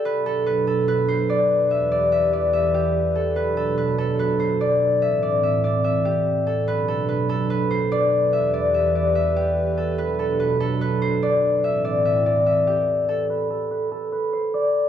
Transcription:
<<
  \new Staff \with { instrumentName = "Harp" } { \time 4/4 \key b \phrygian \tempo 4 = 145 b'8 a'8 b'8 a'8 b'8 c''8 d''8 r8 | e''8 d''8 e''8 d''8 e''8 g'4 a'8 | b'8 a'8 b'8 a'8 b'8 c''8 d''8 r8 | e''8 d''8 e''8 d''8 e''8 g'4 a'8 |
b'8 a'8 b'8 a'8 b'8 c''8 d''8 r8 | e''8 d''8 e''8 d''8 e''8 g'4 a'8 | b'8 a'8 b'8 a'8 b'8 c''8 d''8 r8 | e''8 d''8 e''8 d''8 e''8 g'4 a'8 |
b'8 a'8 b'8 a'8 b'8 c''8 d''8 r8 | }
  \new Staff \with { instrumentName = "Analog synth pad" } { \clef bass \time 4/4 \key b \phrygian << { b'1~ | b'1~ | b'1~ | b'1 |
b'1~ | b'1~ | b'1~ | b'1 |
r1 | } \\ { <b, fis d'>1 | <e, e g'>1 | <b, fis d'>1 | <a, e c'>1 |
<b, fis d'>1 | <e, e g'>1 | <b, fis d'>1 | <a, e c'>1 |
r1 | } >> }
>>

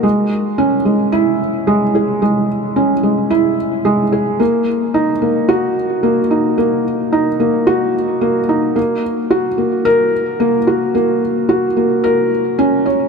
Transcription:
\new Staff \with { instrumentName = "Felt piano" } { \time 4/4 \key cis \dorian \tempo 4 = 110 gis8 r8 cis'8 gis8 e'8 r8 gis8 gis'8 | gis8 r8 cis'8 gis8 e'8 r8 gis8 gis'8 | ais8 r8 dis'8 ais8 fis'8 r8 ais8 dis'8 | ais8 r8 dis'8 ais8 fis'8 r8 ais8 dis'8 |
ais8 r8 fis'8 ais8 ais'8 r8 ais8 fis'8 | ais8 r8 fis'8 ais8 ais'8 r8 cis'8 cis''8 | }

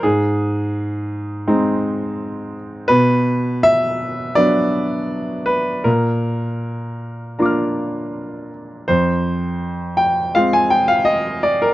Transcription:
\new Staff \with { instrumentName = "Grand piano" } { \time 4/4 \key f \dorian \tempo 4 = 82 << { aes,2 <aes c' ees'>2 | b,2 <fis b d'>2 | bes,2 <bes d' f' bes'' d''' f'''>2 | f,2 <aes c' f'>2 | } \\ { aes'2.~ aes'8 r8 | b'4 e''4 d''4. b'8 | bes'2.~ bes'8 r8 | c''4. g''8 f''16 aes''16 g''16 f''16 ees''8 d''16 bes'16 | } >> }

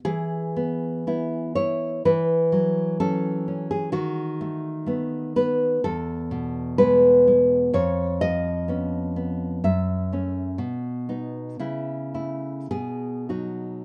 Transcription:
\new Staff \with { instrumentName = "Nylon-string guitar" } { \time 2/4 \key e \major \tempo 4 = 63 << { gis'4. cis''8 | b'4 a'8. gis'16 | fis'4. b'8 | a'4 b'4 |
cis''8 dis''4. | e''4 r4 | e'4 gis'8 fis'8 | } \\ { e8 b8 <b e'>8 e'8 | e8 fis8 <fis cis'>8 cis'8 | dis8 a8 <a b>8 b8 | e,8 b,8 <gis b>8 gis8 |
eis,8 eis8 <b cis'>8 b8 | fis,8 <a cis'>8 b,8 <b dis'>8 | cis8 <a e'>8 b,8 <fis dis'>8 | } >> }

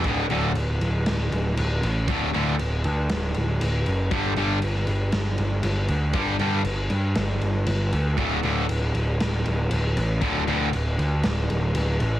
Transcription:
<<
  \new Staff \with { instrumentName = "Distorted electric guitar" } { \clef bass \time 4/4 \key g \mixolydian \tempo 4 = 118 <d, a, d>8 <d, a, d>8 r2. | <d, a, d>8 <d, a, d>8 r2. | <g, d g>8 <g, d g>8 r2. | <g, d g>8 <g, d g>8 r2. |
<d, a, d>8 <d, a, d>8 r2. | <d, a, d>8 <d, a, d>8 r2. | }
  \new Staff \with { instrumentName = "Distorted electric guitar" } { \clef bass \time 4/4 \key g \mixolydian <d, a, d>8 <d, a, d>8 r2. | <d, a, d>8 <d, a, d>8 r2. | <g, d g>8 <g, d g>8 r2. | <g, d g>8 <g, d g>8 r2. |
<d, a, d>8 <d, a, d>8 r2. | <d, a, d>8 <d, a, d>8 r2. | }
  \new Staff \with { instrumentName = "Picked electric bass" } { \clef bass \time 4/4 \key g \mixolydian d,,8 d,,8 d,,8 d,,8 d,,8 d,,8 d,,8 a,,8 | r8 d,8 d,,8 d,8 d,,8 d,,8 d,,8 fis,,8 | g,,8 g,,8 g,,8 g,,8 g,,8 g,,8 g,,8 d,8 | g,,8 g,8 g,,8 g,8 g,,8 g,,8 g,,8 d,8 |
d,,8 d,,8 d,,8 d,,8 d,,8 d,,8 d,,8 a,,8 | d,,8 d,8 d,,8 d,8 d,,8 d,,8 d,,8 a,,8 | }
  \new DrumStaff \with { instrumentName = "Drums" } \drummode { \time 4/4 <cymc bd>8 cymc8 cymc8 cymc8 <cymc sn>8 cymc8 cymc8 cymc8 | <cymc bd>8 cymc8 cymc8 cymc8 <cymc sn>8 cymc8 cymc8 cymc8 | <cymc bd>8 cymc8 cymc16 sn16 cymc8 <cymc sn>8 cymc8 cymc8 cymc8 | <cymc bd>8 cymc8 cymc8 cymc8 <cymc sn>8 cymc8 cymc8 cymc8 |
<cymc bd>8 cymc8 cymc8 cymc8 <cymc sn>8 cymc8 cymc8 cymc8 | <cymc bd>8 cymc8 cymc8 cymc8 <cymc sn>8 cymc8 cymc8 cymc8 | }
>>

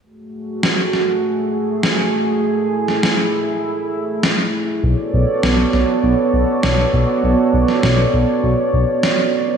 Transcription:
<<
  \new Staff \with { instrumentName = "Analog synth pad" } { \time 4/4 \key fis \minor \tempo 4 = 100 << { <a gis'>1~ | <a gis'>1 | <b fis' a' d''>1~ | <b fis' a' d''>1 | } \\ { fis'1 | e'1 | cis''1~ | cis''1 | } >> }
  \new Staff \with { instrumentName = "Analog synth bass" } { \clef bass \time 4/4 \key fis \minor r1 | r1 | b,,8 b,,8 b,,8 b,,8 b,,8 b,,8 b,,8 b,,8 | b,,8 b,,8 b,,8 b,,8 b,,8 b,,8 r4 | }
  \new DrumStaff \with { instrumentName = "Drums" } \drummode { \time 4/4 r4 sn8 sn8 r4 sn4 | r8. sn16 sn4 r4 sn4 | r4 sn8 sn8 r4 sn4 | r8. sn16 sn4 r4 sn4 | }
>>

